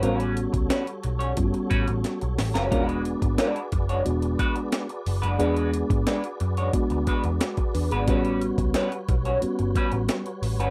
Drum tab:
HH |xxxxxxxxxxxxxxox|xxxxxxxxxxxxxxox|xxxxxxxxxxxxxxox|xxxxxxxxxxxxxxox|
SD |----o-------o-oo|----o-------o---|----o-------o---|----o-------o---|
BD |---o----o-o-----|o--o--o---o-----|---o----o-o--o--|o--o--o---o-----|